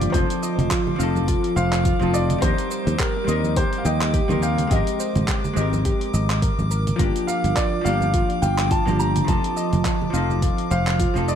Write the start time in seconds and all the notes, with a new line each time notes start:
Already playing: A#3 D4 G4 D5 F5 D6
0.01 open hi-hat, low conga, shaker
0.10 F1 F3 C4 C5, kick, high conga
0.14 D#4 F4 A4, open hi-hat, shaker
0.30 open hi-hat, shaker
0.43 D#5, shaker
0.58 F1, open hi-hat, high conga, low conga, shaker
0.71 F4, kick, clap, open hi-hat, shaker
0.87 high bongo, low conga
0.96 F1 F3 C4 F5
1.00 D#4 A4, shaker
1.16 high conga, shaker
1.28 F4, kick, open hi-hat, high bongo, shaker
1.44 open hi-hat
1.56 F1 C5 F5, high conga, shaker
1.73 clap, open hi-hat, shaker
1.85 F4, kick, open hi-hat, shaker
1.99 F1 F3 C4 D#4 A4, high conga, shaker
2.14 D5 D#5, shaker
2.30 open hi-hat, low conga, shaker
2.38 D#2 G3 C4 G4 C5, kick, open hi-hat, high conga
2.43 D#4 A#4, shaker
2.58 open hi-hat, shaker
2.71 C5, shaker
2.87 D#2, open hi-hat, high conga, shaker
2.99 G4 A#4, kick, clap, open hi-hat, shaker
3.17 high bongo
3.24 D#2 G3 C4
3.28 D#4 A#4 D#5, shaker
3.44 high conga, shaker
3.56 G4 C5, kick, open hi-hat, shaker
3.73 open hi-hat
3.78 F5
3.84 D#2 D#5 G5, high bongo, high conga, shaker
4.01 clap, open hi-hat, shaker
4.14 G4, kick, open hi-hat, shaker
4.28 D#2 G3 C4 D#4 A#4, high conga, low conga, shaker
4.42 F5 G5, shaker
4.58 open hi-hat, low conga, shaker
4.67 G#1 G#3 C4 G4 D#5, kick, open hi-hat, high conga
4.71 G4 A#4, shaker
4.87 open hi-hat, shaker
5.00 C5, shaker
5.15 G#1, open hi-hat, high conga, low conga, shaker
5.28 G4, kick, clap, open hi-hat, shaker
5.44 high bongo, low conga, shaker
5.53 G#1 G#3 C4 D#5, shaker
5.58 G4 A#4
5.73 high conga, shaker
5.85 G4, kick, open hi-hat, high bongo, shaker
6.01 open hi-hat
6.14 G#1 D#5, high conga, shaker
6.30 clap, open hi-hat, shaker
6.42 A#4, kick, open hi-hat, shaker
6.59 G#1, high conga, shaker
6.71 A#4, shaker
6.87 open hi-hat, low conga, shaker
6.96 G1 F3 A#3 F4, kick, open hi-hat, high conga, shaker
7.01 D4 G4
7.16 open hi-hat, shaker
7.27 A#4 F5, shaker
7.44 G1, open hi-hat, high conga, shaker
7.56 F4 D5, kick, clap, open hi-hat, shaker
7.73 high bongo
7.81 F3 A#3 D5 F5
7.86 G1 D4 G4, shaker
8.01 high conga, shaker
8.14 F4, kick, open hi-hat, shaker
8.30 open hi-hat
8.42 G1 F5 G5, high bongo, high conga, shaker
8.58 clap, open hi-hat, shaker
8.71 F4 A5, kick, open hi-hat, shaker
8.85 G1 F3 A#3 D4 G4, high conga, low conga, shaker
8.99 G4 A#5, shaker
9.16 open hi-hat, low conga, shaker
9.24 F1 F3 C4 F4 A5, kick, open hi-hat
9.29 D#4 A4, high conga, shaker
9.44 open hi-hat, shaker
9.57 D#5, shaker
9.73 F1, open hi-hat, high conga, low conga, shaker
9.85 F4, kick, clap, open hi-hat, shaker
10.02 high bongo, low conga
10.10 F1 F3 C4 F5, shaker
10.15 D#4 A4
10.30 high conga, shaker
10.42 F4, kick, open hi-hat, high bongo, shaker
10.58 open hi-hat
10.71 F1 C5 F5, high conga, shaker
10.87 clap, open hi-hat, shaker
10.99 F4, kick, open hi-hat, shaker
11.14 F1 F3 C4 D#4 A4, high conga, shaker
11.28 D5 D#5, shaker